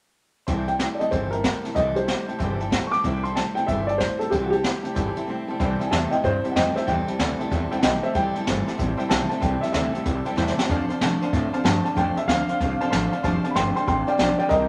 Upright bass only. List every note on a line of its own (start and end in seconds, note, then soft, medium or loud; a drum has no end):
0.48 0.85 C2 medium
1.00 muted upright bass stroke medium
1.12 1.49 G1 medium
1.65 muted upright bass stroke medium
1.76 2.13 C2 medium
2.29 muted upright bass stroke medium
2.40 2.77 G1 medium
2.93 muted upright bass stroke medium
3.04 3.41 C2 medium
3.57 muted upright bass stroke medium
3.68 4.05 G1 medium
4.21 muted upright bass stroke medium
4.32 4.69 C2 medium
4.85 muted upright bass stroke medium
4.96 5.10 G1 medium
5.60 5.80 C2 medium
5.81 muted upright bass stroke medium
5.92 6.12 E2 medium
6.12 muted upright bass stroke medium
6.24 6.44 G2 medium
6.56 6.76 F2 loud
6.77 muted upright bass stroke medium
6.88 7.08 E2 medium
7.08 muted upright bass stroke medium
7.19 7.39 D2 medium
7.40 muted upright bass stroke medium
7.51 7.71 E2 medium
7.72 muted upright bass stroke medium
7.83 8.03 B1 medium
8.04 muted upright bass stroke medium
8.15 8.34 C2 medium
8.47 8.67 G1 medium
8.79 8.98 A1 medium
9.11 9.30 B1 medium
9.43 9.61 C2 medium
9.62 muted upright bass stroke medium
9.74 9.94 D2 medium
9.95 muted upright bass stroke medium
10.06 10.26 C2 medium
10.26 muted upright bass stroke medium
10.37 10.57 E2 medium
10.58 muted upright bass stroke medium
10.69 10.88 F2 medium
10.89 muted upright bass stroke medium
11.01 11.21 C3 medium
11.21 muted upright bass stroke medium
11.33 11.53 A2 medium
11.65 11.84 G2 loud
11.97 12.16 F2 medium
12.16 muted upright bass stroke medium
12.28 12.48 D2 medium
12.48 muted upright bass stroke medium
12.60 12.80 C2 medium
12.80 muted upright bass stroke medium
12.92 13.12 A1 medium
13.24 13.44 F1 medium
13.55 13.75 G1 medium
13.77 muted upright bass stroke medium
13.88 14.07 A1 medium
14.19 14.39 B1 medium
14.51 14.68 C2 medium